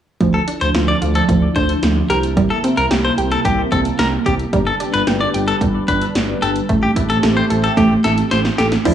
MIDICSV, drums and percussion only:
0, 0, Header, 1, 2, 480
1, 0, Start_track
1, 0, Key_signature, -1, "minor"
1, 0, Tempo, 540541
1, 183, Time_signature, 4, 2, 24, 8
1, 7942, End_track
2, 0, Start_track
2, 0, Title_t, "Drums"
2, 183, Note_on_c, 9, 36, 99
2, 183, Note_on_c, 9, 42, 53
2, 272, Note_off_c, 9, 36, 0
2, 272, Note_off_c, 9, 42, 0
2, 424, Note_on_c, 9, 42, 85
2, 512, Note_off_c, 9, 42, 0
2, 544, Note_on_c, 9, 42, 56
2, 633, Note_off_c, 9, 42, 0
2, 662, Note_on_c, 9, 42, 70
2, 663, Note_on_c, 9, 38, 99
2, 751, Note_off_c, 9, 42, 0
2, 752, Note_off_c, 9, 38, 0
2, 905, Note_on_c, 9, 42, 66
2, 993, Note_off_c, 9, 42, 0
2, 1023, Note_on_c, 9, 42, 52
2, 1112, Note_off_c, 9, 42, 0
2, 1142, Note_on_c, 9, 36, 91
2, 1145, Note_on_c, 9, 42, 70
2, 1231, Note_off_c, 9, 36, 0
2, 1234, Note_off_c, 9, 42, 0
2, 1382, Note_on_c, 9, 42, 72
2, 1383, Note_on_c, 9, 36, 79
2, 1471, Note_off_c, 9, 42, 0
2, 1472, Note_off_c, 9, 36, 0
2, 1501, Note_on_c, 9, 42, 55
2, 1590, Note_off_c, 9, 42, 0
2, 1623, Note_on_c, 9, 42, 77
2, 1624, Note_on_c, 9, 38, 105
2, 1712, Note_off_c, 9, 42, 0
2, 1713, Note_off_c, 9, 38, 0
2, 1865, Note_on_c, 9, 42, 74
2, 1954, Note_off_c, 9, 42, 0
2, 1984, Note_on_c, 9, 42, 50
2, 2072, Note_off_c, 9, 42, 0
2, 2103, Note_on_c, 9, 36, 106
2, 2104, Note_on_c, 9, 42, 56
2, 2192, Note_off_c, 9, 36, 0
2, 2192, Note_off_c, 9, 42, 0
2, 2344, Note_on_c, 9, 42, 82
2, 2433, Note_off_c, 9, 42, 0
2, 2464, Note_on_c, 9, 42, 54
2, 2553, Note_off_c, 9, 42, 0
2, 2583, Note_on_c, 9, 38, 104
2, 2583, Note_on_c, 9, 42, 74
2, 2672, Note_off_c, 9, 38, 0
2, 2672, Note_off_c, 9, 42, 0
2, 2824, Note_on_c, 9, 42, 67
2, 2913, Note_off_c, 9, 42, 0
2, 2944, Note_on_c, 9, 42, 53
2, 3033, Note_off_c, 9, 42, 0
2, 3062, Note_on_c, 9, 36, 91
2, 3066, Note_on_c, 9, 42, 72
2, 3151, Note_off_c, 9, 36, 0
2, 3154, Note_off_c, 9, 42, 0
2, 3302, Note_on_c, 9, 36, 81
2, 3304, Note_on_c, 9, 42, 73
2, 3391, Note_off_c, 9, 36, 0
2, 3392, Note_off_c, 9, 42, 0
2, 3421, Note_on_c, 9, 42, 56
2, 3510, Note_off_c, 9, 42, 0
2, 3542, Note_on_c, 9, 42, 79
2, 3544, Note_on_c, 9, 38, 109
2, 3631, Note_off_c, 9, 42, 0
2, 3633, Note_off_c, 9, 38, 0
2, 3783, Note_on_c, 9, 36, 83
2, 3785, Note_on_c, 9, 42, 78
2, 3872, Note_off_c, 9, 36, 0
2, 3874, Note_off_c, 9, 42, 0
2, 3902, Note_on_c, 9, 42, 50
2, 3991, Note_off_c, 9, 42, 0
2, 4023, Note_on_c, 9, 36, 105
2, 4023, Note_on_c, 9, 42, 54
2, 4112, Note_off_c, 9, 36, 0
2, 4112, Note_off_c, 9, 42, 0
2, 4264, Note_on_c, 9, 42, 84
2, 4353, Note_off_c, 9, 42, 0
2, 4384, Note_on_c, 9, 42, 56
2, 4473, Note_off_c, 9, 42, 0
2, 4503, Note_on_c, 9, 38, 102
2, 4503, Note_on_c, 9, 42, 73
2, 4592, Note_off_c, 9, 38, 0
2, 4592, Note_off_c, 9, 42, 0
2, 4745, Note_on_c, 9, 42, 68
2, 4834, Note_off_c, 9, 42, 0
2, 4865, Note_on_c, 9, 42, 53
2, 4953, Note_off_c, 9, 42, 0
2, 4982, Note_on_c, 9, 36, 93
2, 4985, Note_on_c, 9, 42, 70
2, 5071, Note_off_c, 9, 36, 0
2, 5074, Note_off_c, 9, 42, 0
2, 5222, Note_on_c, 9, 36, 82
2, 5223, Note_on_c, 9, 42, 76
2, 5311, Note_off_c, 9, 36, 0
2, 5312, Note_off_c, 9, 42, 0
2, 5341, Note_on_c, 9, 42, 55
2, 5430, Note_off_c, 9, 42, 0
2, 5464, Note_on_c, 9, 42, 78
2, 5465, Note_on_c, 9, 38, 102
2, 5553, Note_off_c, 9, 42, 0
2, 5554, Note_off_c, 9, 38, 0
2, 5706, Note_on_c, 9, 42, 78
2, 5795, Note_off_c, 9, 42, 0
2, 5823, Note_on_c, 9, 42, 49
2, 5911, Note_off_c, 9, 42, 0
2, 5942, Note_on_c, 9, 42, 56
2, 5943, Note_on_c, 9, 36, 101
2, 6031, Note_off_c, 9, 36, 0
2, 6031, Note_off_c, 9, 42, 0
2, 6182, Note_on_c, 9, 36, 88
2, 6184, Note_on_c, 9, 42, 83
2, 6271, Note_off_c, 9, 36, 0
2, 6273, Note_off_c, 9, 42, 0
2, 6304, Note_on_c, 9, 42, 57
2, 6393, Note_off_c, 9, 42, 0
2, 6422, Note_on_c, 9, 38, 100
2, 6422, Note_on_c, 9, 42, 75
2, 6510, Note_off_c, 9, 42, 0
2, 6511, Note_off_c, 9, 38, 0
2, 6664, Note_on_c, 9, 42, 67
2, 6753, Note_off_c, 9, 42, 0
2, 6782, Note_on_c, 9, 42, 51
2, 6871, Note_off_c, 9, 42, 0
2, 6902, Note_on_c, 9, 36, 94
2, 6903, Note_on_c, 9, 38, 52
2, 6905, Note_on_c, 9, 42, 75
2, 6991, Note_off_c, 9, 36, 0
2, 6992, Note_off_c, 9, 38, 0
2, 6993, Note_off_c, 9, 42, 0
2, 7142, Note_on_c, 9, 38, 61
2, 7142, Note_on_c, 9, 42, 74
2, 7230, Note_off_c, 9, 42, 0
2, 7231, Note_off_c, 9, 38, 0
2, 7261, Note_on_c, 9, 42, 56
2, 7350, Note_off_c, 9, 42, 0
2, 7382, Note_on_c, 9, 38, 72
2, 7382, Note_on_c, 9, 42, 77
2, 7471, Note_off_c, 9, 38, 0
2, 7471, Note_off_c, 9, 42, 0
2, 7503, Note_on_c, 9, 38, 71
2, 7591, Note_off_c, 9, 38, 0
2, 7622, Note_on_c, 9, 38, 88
2, 7624, Note_on_c, 9, 42, 78
2, 7711, Note_off_c, 9, 38, 0
2, 7713, Note_off_c, 9, 42, 0
2, 7742, Note_on_c, 9, 42, 49
2, 7743, Note_on_c, 9, 38, 79
2, 7831, Note_off_c, 9, 42, 0
2, 7832, Note_off_c, 9, 38, 0
2, 7862, Note_on_c, 9, 36, 105
2, 7862, Note_on_c, 9, 42, 59
2, 7862, Note_on_c, 9, 49, 83
2, 7942, Note_off_c, 9, 36, 0
2, 7942, Note_off_c, 9, 42, 0
2, 7942, Note_off_c, 9, 49, 0
2, 7942, End_track
0, 0, End_of_file